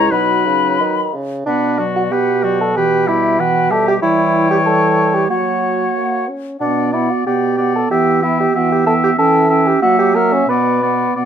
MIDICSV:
0, 0, Header, 1, 6, 480
1, 0, Start_track
1, 0, Key_signature, 2, "minor"
1, 0, Tempo, 665188
1, 82, Time_signature, 2, 2, 24, 8
1, 1520, Tempo, 642398
1, 7280, Tempo, 669643
1, 8310, End_track
2, 0, Start_track
2, 0, Title_t, "Flute"
2, 0, Program_c, 0, 73
2, 0, Note_on_c, 0, 82, 68
2, 78, Note_off_c, 0, 82, 0
2, 89, Note_on_c, 0, 83, 65
2, 800, Note_off_c, 0, 83, 0
2, 1056, Note_on_c, 0, 78, 37
2, 1287, Note_on_c, 0, 74, 32
2, 1298, Note_off_c, 0, 78, 0
2, 1526, Note_on_c, 0, 78, 37
2, 1537, Note_off_c, 0, 74, 0
2, 1766, Note_on_c, 0, 74, 38
2, 1777, Note_off_c, 0, 78, 0
2, 1996, Note_off_c, 0, 74, 0
2, 2001, Note_on_c, 0, 79, 43
2, 2239, Note_on_c, 0, 76, 41
2, 2250, Note_off_c, 0, 79, 0
2, 2479, Note_on_c, 0, 79, 45
2, 2490, Note_off_c, 0, 76, 0
2, 2716, Note_on_c, 0, 76, 45
2, 2727, Note_off_c, 0, 79, 0
2, 2939, Note_off_c, 0, 76, 0
2, 2943, Note_on_c, 0, 79, 53
2, 3873, Note_off_c, 0, 79, 0
2, 3904, Note_on_c, 0, 78, 38
2, 4624, Note_off_c, 0, 78, 0
2, 4875, Note_on_c, 0, 78, 40
2, 5119, Note_off_c, 0, 78, 0
2, 5129, Note_on_c, 0, 78, 34
2, 5368, Note_off_c, 0, 78, 0
2, 5372, Note_on_c, 0, 78, 39
2, 5609, Note_off_c, 0, 78, 0
2, 5618, Note_on_c, 0, 78, 38
2, 5850, Note_off_c, 0, 78, 0
2, 5854, Note_on_c, 0, 79, 41
2, 6090, Note_off_c, 0, 79, 0
2, 6094, Note_on_c, 0, 79, 35
2, 6327, Note_off_c, 0, 79, 0
2, 6331, Note_on_c, 0, 79, 46
2, 6563, Note_off_c, 0, 79, 0
2, 6566, Note_on_c, 0, 79, 44
2, 6798, Note_off_c, 0, 79, 0
2, 6802, Note_on_c, 0, 79, 55
2, 7036, Note_off_c, 0, 79, 0
2, 7046, Note_on_c, 0, 79, 46
2, 7276, Note_off_c, 0, 79, 0
2, 7281, Note_on_c, 0, 78, 51
2, 7513, Note_off_c, 0, 78, 0
2, 7524, Note_on_c, 0, 78, 43
2, 7757, Note_off_c, 0, 78, 0
2, 7762, Note_on_c, 0, 78, 43
2, 7997, Note_off_c, 0, 78, 0
2, 8010, Note_on_c, 0, 78, 35
2, 8242, Note_off_c, 0, 78, 0
2, 8246, Note_on_c, 0, 78, 44
2, 8310, Note_off_c, 0, 78, 0
2, 8310, End_track
3, 0, Start_track
3, 0, Title_t, "Oboe"
3, 0, Program_c, 1, 68
3, 0, Note_on_c, 1, 73, 57
3, 84, Note_on_c, 1, 71, 45
3, 95, Note_off_c, 1, 73, 0
3, 815, Note_off_c, 1, 71, 0
3, 1059, Note_on_c, 1, 71, 33
3, 1289, Note_on_c, 1, 66, 31
3, 1300, Note_off_c, 1, 71, 0
3, 1533, Note_on_c, 1, 71, 34
3, 1545, Note_off_c, 1, 66, 0
3, 1765, Note_on_c, 1, 66, 35
3, 1776, Note_off_c, 1, 71, 0
3, 2004, Note_off_c, 1, 66, 0
3, 2014, Note_on_c, 1, 71, 44
3, 2244, Note_on_c, 1, 67, 40
3, 2255, Note_off_c, 1, 71, 0
3, 2484, Note_on_c, 1, 71, 42
3, 2496, Note_off_c, 1, 67, 0
3, 2717, Note_on_c, 1, 67, 41
3, 2728, Note_off_c, 1, 71, 0
3, 2946, Note_off_c, 1, 67, 0
3, 2951, Note_on_c, 1, 73, 51
3, 3877, Note_off_c, 1, 73, 0
3, 3909, Note_on_c, 1, 73, 37
3, 4627, Note_off_c, 1, 73, 0
3, 4884, Note_on_c, 1, 74, 36
3, 5117, Note_off_c, 1, 74, 0
3, 5121, Note_on_c, 1, 74, 33
3, 5364, Note_off_c, 1, 74, 0
3, 5377, Note_on_c, 1, 74, 35
3, 5605, Note_off_c, 1, 74, 0
3, 5609, Note_on_c, 1, 74, 34
3, 5848, Note_off_c, 1, 74, 0
3, 5856, Note_on_c, 1, 76, 41
3, 6087, Note_off_c, 1, 76, 0
3, 6091, Note_on_c, 1, 76, 38
3, 6326, Note_off_c, 1, 76, 0
3, 6334, Note_on_c, 1, 76, 40
3, 6565, Note_off_c, 1, 76, 0
3, 6568, Note_on_c, 1, 76, 44
3, 6799, Note_off_c, 1, 76, 0
3, 6807, Note_on_c, 1, 76, 47
3, 7038, Note_off_c, 1, 76, 0
3, 7044, Note_on_c, 1, 76, 46
3, 7280, Note_off_c, 1, 76, 0
3, 7285, Note_on_c, 1, 76, 48
3, 7516, Note_off_c, 1, 76, 0
3, 7524, Note_on_c, 1, 76, 42
3, 7757, Note_off_c, 1, 76, 0
3, 7770, Note_on_c, 1, 74, 42
3, 8001, Note_off_c, 1, 74, 0
3, 8008, Note_on_c, 1, 74, 34
3, 8241, Note_off_c, 1, 74, 0
3, 8244, Note_on_c, 1, 74, 33
3, 8310, Note_off_c, 1, 74, 0
3, 8310, End_track
4, 0, Start_track
4, 0, Title_t, "Bassoon"
4, 0, Program_c, 2, 70
4, 0, Note_on_c, 2, 37, 58
4, 77, Note_off_c, 2, 37, 0
4, 84, Note_on_c, 2, 47, 56
4, 324, Note_off_c, 2, 47, 0
4, 332, Note_on_c, 2, 49, 46
4, 568, Note_off_c, 2, 49, 0
4, 577, Note_on_c, 2, 51, 39
4, 818, Note_on_c, 2, 49, 39
4, 829, Note_off_c, 2, 51, 0
4, 1048, Note_off_c, 2, 49, 0
4, 1053, Note_on_c, 2, 62, 54
4, 1315, Note_off_c, 2, 62, 0
4, 1413, Note_on_c, 2, 66, 50
4, 1464, Note_off_c, 2, 66, 0
4, 1527, Note_on_c, 2, 67, 55
4, 1880, Note_off_c, 2, 67, 0
4, 1896, Note_on_c, 2, 69, 61
4, 2013, Note_on_c, 2, 67, 67
4, 2024, Note_off_c, 2, 69, 0
4, 2243, Note_off_c, 2, 67, 0
4, 2248, Note_on_c, 2, 64, 64
4, 2489, Note_on_c, 2, 66, 69
4, 2500, Note_off_c, 2, 64, 0
4, 2720, Note_on_c, 2, 69, 76
4, 2731, Note_off_c, 2, 66, 0
4, 2834, Note_off_c, 2, 69, 0
4, 2846, Note_on_c, 2, 67, 69
4, 2895, Note_off_c, 2, 67, 0
4, 2953, Note_on_c, 2, 64, 73
4, 3299, Note_off_c, 2, 64, 0
4, 3312, Note_on_c, 2, 67, 58
4, 3364, Note_off_c, 2, 67, 0
4, 3426, Note_on_c, 2, 69, 66
4, 3789, Note_on_c, 2, 67, 58
4, 3800, Note_off_c, 2, 69, 0
4, 3903, Note_off_c, 2, 67, 0
4, 3907, Note_on_c, 2, 66, 53
4, 4624, Note_off_c, 2, 66, 0
4, 4882, Note_on_c, 2, 62, 53
4, 5127, Note_on_c, 2, 64, 51
4, 5138, Note_off_c, 2, 62, 0
4, 5256, Note_on_c, 2, 66, 47
4, 5267, Note_off_c, 2, 64, 0
4, 5371, Note_off_c, 2, 66, 0
4, 5375, Note_on_c, 2, 67, 53
4, 5729, Note_off_c, 2, 67, 0
4, 5740, Note_on_c, 2, 69, 52
4, 5851, Note_off_c, 2, 69, 0
4, 5856, Note_on_c, 2, 67, 57
4, 6098, Note_on_c, 2, 64, 56
4, 6109, Note_off_c, 2, 67, 0
4, 6216, Note_off_c, 2, 64, 0
4, 6224, Note_on_c, 2, 67, 56
4, 6338, Note_on_c, 2, 66, 61
4, 6349, Note_off_c, 2, 67, 0
4, 6454, Note_off_c, 2, 66, 0
4, 6462, Note_on_c, 2, 67, 57
4, 6566, Note_off_c, 2, 67, 0
4, 6571, Note_on_c, 2, 69, 68
4, 6623, Note_off_c, 2, 69, 0
4, 6698, Note_on_c, 2, 67, 64
4, 6748, Note_off_c, 2, 67, 0
4, 6810, Note_on_c, 2, 69, 81
4, 7170, Note_on_c, 2, 67, 63
4, 7181, Note_off_c, 2, 69, 0
4, 7278, Note_off_c, 2, 67, 0
4, 7282, Note_on_c, 2, 66, 74
4, 7398, Note_off_c, 2, 66, 0
4, 7404, Note_on_c, 2, 67, 68
4, 7522, Note_on_c, 2, 70, 66
4, 7532, Note_off_c, 2, 67, 0
4, 7648, Note_on_c, 2, 61, 66
4, 7659, Note_off_c, 2, 70, 0
4, 7757, Note_off_c, 2, 61, 0
4, 7761, Note_on_c, 2, 71, 58
4, 8233, Note_off_c, 2, 71, 0
4, 8310, End_track
5, 0, Start_track
5, 0, Title_t, "Clarinet"
5, 0, Program_c, 3, 71
5, 0, Note_on_c, 3, 64, 55
5, 86, Note_on_c, 3, 63, 46
5, 97, Note_off_c, 3, 64, 0
5, 815, Note_off_c, 3, 63, 0
5, 1052, Note_on_c, 3, 59, 34
5, 1288, Note_on_c, 3, 54, 34
5, 1299, Note_off_c, 3, 59, 0
5, 1520, Note_on_c, 3, 59, 34
5, 1531, Note_off_c, 3, 54, 0
5, 1765, Note_on_c, 3, 54, 34
5, 1776, Note_off_c, 3, 59, 0
5, 2004, Note_off_c, 3, 54, 0
5, 2007, Note_on_c, 3, 52, 41
5, 2241, Note_on_c, 3, 55, 41
5, 2252, Note_off_c, 3, 52, 0
5, 2479, Note_on_c, 3, 52, 46
5, 2490, Note_off_c, 3, 55, 0
5, 2708, Note_on_c, 3, 55, 41
5, 2719, Note_off_c, 3, 52, 0
5, 2940, Note_off_c, 3, 55, 0
5, 2944, Note_on_c, 3, 55, 47
5, 3391, Note_off_c, 3, 55, 0
5, 3417, Note_on_c, 3, 55, 45
5, 3902, Note_on_c, 3, 58, 38
5, 3913, Note_off_c, 3, 55, 0
5, 4638, Note_off_c, 3, 58, 0
5, 4877, Note_on_c, 3, 59, 39
5, 5120, Note_off_c, 3, 59, 0
5, 5125, Note_on_c, 3, 59, 35
5, 5366, Note_off_c, 3, 59, 0
5, 5371, Note_on_c, 3, 59, 37
5, 5609, Note_off_c, 3, 59, 0
5, 5614, Note_on_c, 3, 59, 38
5, 5846, Note_off_c, 3, 59, 0
5, 5851, Note_on_c, 3, 59, 42
5, 6088, Note_off_c, 3, 59, 0
5, 6092, Note_on_c, 3, 59, 38
5, 6327, Note_off_c, 3, 59, 0
5, 6331, Note_on_c, 3, 59, 42
5, 6563, Note_off_c, 3, 59, 0
5, 6568, Note_on_c, 3, 59, 46
5, 6797, Note_off_c, 3, 59, 0
5, 6801, Note_on_c, 3, 61, 50
5, 7032, Note_off_c, 3, 61, 0
5, 7037, Note_on_c, 3, 61, 51
5, 7276, Note_off_c, 3, 61, 0
5, 7282, Note_on_c, 3, 58, 49
5, 7510, Note_off_c, 3, 58, 0
5, 7514, Note_on_c, 3, 58, 44
5, 7752, Note_off_c, 3, 58, 0
5, 7756, Note_on_c, 3, 59, 41
5, 7994, Note_off_c, 3, 59, 0
5, 8001, Note_on_c, 3, 59, 38
5, 8237, Note_off_c, 3, 59, 0
5, 8244, Note_on_c, 3, 59, 33
5, 8310, Note_off_c, 3, 59, 0
5, 8310, End_track
6, 0, Start_track
6, 0, Title_t, "French horn"
6, 0, Program_c, 4, 60
6, 0, Note_on_c, 4, 56, 62
6, 75, Note_on_c, 4, 54, 46
6, 86, Note_off_c, 4, 56, 0
6, 810, Note_off_c, 4, 54, 0
6, 1052, Note_on_c, 4, 47, 48
6, 2919, Note_off_c, 4, 47, 0
6, 2952, Note_on_c, 4, 52, 59
6, 3877, Note_off_c, 4, 52, 0
6, 3906, Note_on_c, 4, 54, 42
6, 4336, Note_off_c, 4, 54, 0
6, 4398, Note_on_c, 4, 58, 37
6, 4642, Note_on_c, 4, 61, 40
6, 4653, Note_off_c, 4, 58, 0
6, 4877, Note_off_c, 4, 61, 0
6, 4882, Note_on_c, 4, 47, 51
6, 5248, Note_off_c, 4, 47, 0
6, 5375, Note_on_c, 4, 47, 40
6, 5800, Note_off_c, 4, 47, 0
6, 5855, Note_on_c, 4, 52, 54
6, 6277, Note_off_c, 4, 52, 0
6, 6335, Note_on_c, 4, 52, 49
6, 6749, Note_off_c, 4, 52, 0
6, 6803, Note_on_c, 4, 52, 59
6, 7225, Note_off_c, 4, 52, 0
6, 7287, Note_on_c, 4, 54, 58
6, 7704, Note_off_c, 4, 54, 0
6, 7754, Note_on_c, 4, 47, 53
6, 8182, Note_off_c, 4, 47, 0
6, 8241, Note_on_c, 4, 47, 41
6, 8310, Note_off_c, 4, 47, 0
6, 8310, End_track
0, 0, End_of_file